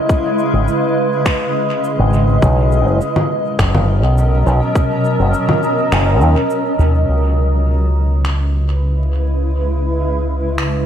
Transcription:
0.00 2.42 C#3 medium
0.00 2.42 G#3 medium
0.00 2.43 E4 medium
0.00 2.43 B4 medium
0.00 10.86 D#5 medium
0.09 kick loud
0.09 shaker soft
0.39 shaker soft
0.53 0.66 G#1 medium
0.68 shaker soft
1.26 finger snap medium
1.26 kick loud
1.26 shaker soft
1.84 shaker soft
1.99 2.40 G#1 loud
2.13 shaker soft
2.42 2.87 B1 loud
2.42 7.08 B2 medium
2.42 kick loud
2.42 shaker medium
2.57 7.08 F#3 medium
2.57 8.50 C#4 medium
2.72 7.08 A#4 medium
2.72 shaker soft
2.87 2.99 F#1 medium
3.01 shaker medium
3.16 low conga medium
3.59 4.03 F#1 medium
3.59 finger snap medium
3.59 kick loud
3.59 shaker medium
3.75 low conga medium
4.03 4.44 B1 loud
4.18 shaker medium
4.46 4.59 B1 medium
4.46 shaker soft
4.75 kick loud
4.75 shaker medium
5.05 shaker soft
5.19 5.32 F#1 medium
5.34 shaker medium
5.49 low conga medium
5.63 shaker soft
5.92 6.21 F#1 loud
5.92 finger snap medium
5.92 shaker medium
6.21 6.34 D#2 medium
6.21 shaker soft
6.50 shaker medium
6.79 7.05 D#2 loud
6.79 shaker soft
7.08 10.86 C#2 medium
7.08 10.86 C#3 medium
7.22 10.86 B4 medium
7.34 10.86 G#3 medium
7.51 10.86 E4 medium
8.25 finger snap medium
10.58 finger snap medium

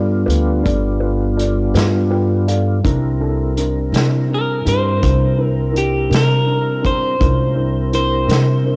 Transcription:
0.00 0.24 G2 medium
0.00 2.81 G3 medium
0.00 2.81 B3 medium
0.00 2.80 D4 medium
0.00 0.18 F4 medium
0.00 2.81 F4 medium
0.00 0.18 A4 medium
0.00 0.19 D5 medium
0.26 0.62 D2 medium
0.26 0.55 F4 medium
0.26 0.55 A4 medium
0.26 0.55 B4 medium
0.30 closed hi-hat medium
0.63 1.71 G1 medium
0.63 0.92 F4 medium
0.63 0.92 A4 medium
0.63 0.92 D5 medium
0.63 kick medium
0.63 closed hi-hat medium
0.99 1.28 F4 medium
0.99 1.28 A4 medium
0.99 1.28 B4 medium
1.37 1.65 F4 medium
1.37 1.65 A4 medium
1.37 1.65 D5 medium
1.37 closed hi-hat medium
1.74 2.80 G2 medium
1.74 2.02 F4 medium
1.74 2.02 A4 soft
1.74 2.02 B4 medium
1.74 snare loud
1.74 closed hi-hat medium
2.10 2.38 F4 medium
2.10 2.38 A4 medium
2.10 2.38 B4 medium
2.10 2.45 G5 medium
2.48 2.75 F4 medium
2.48 2.75 A4 medium
2.48 2.75 D5 medium
2.48 2.82 F5 medium
2.48 closed hi-hat medium
2.84 3.90 C2 medium
2.84 7.17 G3 medium
2.84 7.16 C4 medium
2.84 3.11 D4 medium
2.84 3.11 E4 medium
2.84 7.16 E4 medium
2.84 3.12 A#4 medium
2.84 7.17 A#4 medium
2.84 kick medium
2.84 closed hi-hat medium
3.20 3.48 D4 medium
3.20 3.48 E4 medium
3.20 3.48 A4 medium
3.57 3.84 D4 medium
3.57 3.85 E4 medium
3.57 3.85 A#4 medium
3.57 closed hi-hat medium
3.92 4.62 C3 medium
3.92 4.21 D4 medium
3.92 4.21 E4 medium
3.92 4.21 A#4 medium
3.92 snare medium
3.92 closed hi-hat medium
4.29 4.57 D4 soft
4.29 4.57 E4 soft
4.29 4.57 A#4 medium
4.34 4.68 A#4 medium
4.65 5.00 G2 medium
4.65 4.93 D4 medium
4.65 4.93 E4 soft
4.65 4.93 G4 medium
4.65 5.46 C5 medium
4.65 closed hi-hat medium
5.02 6.08 C2 medium
5.02 5.29 D4 medium
5.02 5.29 E4 medium
5.02 5.29 A#4 medium
5.02 kick medium
5.02 closed hi-hat medium
5.37 5.65 D4 soft
5.37 5.65 E4 soft
5.37 5.65 A#4 medium
5.46 5.80 A#4 medium
5.72 6.01 D4 medium
5.72 6.01 E4 soft
5.72 6.01 A#4 medium
5.72 closed hi-hat medium
5.78 6.14 G4 medium
6.09 7.16 C3 medium
6.09 6.37 D4 soft
6.09 6.37 E4 soft
6.09 6.38 A#4 medium
6.09 closed hi-hat medium
6.15 6.86 A#4 medium
6.15 snare loud
6.46 6.74 D4 medium
6.46 6.74 E4 soft
6.46 6.74 A#4 medium
6.82 7.10 D4 medium
6.82 7.10 E4 soft
6.82 7.10 A#4 medium
6.82 kick medium
6.82 closed hi-hat medium
6.86 7.94 C5 medium
7.20 8.25 C2 medium
7.20 7.56 G#3 medium
7.20 7.56 C#4 medium
7.20 7.47 D4 medium
7.20 7.48 E4 medium
7.20 7.56 F4 medium
7.20 7.54 A#4 medium
7.20 7.48 A#4 medium
7.20 kick loud
7.20 closed hi-hat medium
7.55 8.76 G3 medium
7.55 8.76 C4 medium
7.55 7.83 D4 medium
7.55 8.76 E4 medium
7.55 7.83 E4 soft
7.55 8.76 A#4 medium
7.55 7.83 A#4 medium
7.92 8.20 D4 soft
7.92 8.20 E4 soft
7.92 8.20 A#4 medium
7.92 8.76 C5 medium
7.92 closed hi-hat medium
8.28 8.76 C3 medium
8.28 8.55 D4 medium
8.28 8.56 E4 soft
8.28 8.56 A#4 medium
8.28 snare loud
8.28 closed hi-hat medium
8.64 8.76 D4 soft
8.64 8.76 E4 soft
8.64 8.76 A#4 medium

